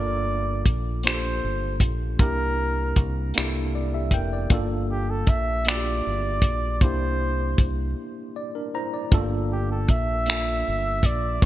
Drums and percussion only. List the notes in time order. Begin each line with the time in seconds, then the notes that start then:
0.65 kick, closed hi-hat
1.03 finger snap, closed hi-hat
1.80 kick, closed hi-hat
2.19 kick, closed hi-hat
2.96 kick, closed hi-hat
3.34 finger snap, closed hi-hat
4.11 kick, closed hi-hat
4.50 kick, closed hi-hat
5.27 kick, closed hi-hat
5.65 finger snap, closed hi-hat
6.42 kick, closed hi-hat
6.81 kick, closed hi-hat
7.58 kick, closed hi-hat
9.12 kick, closed hi-hat
9.88 kick, closed hi-hat
10.26 finger snap, closed hi-hat
11.03 kick, closed hi-hat
11.42 kick, closed hi-hat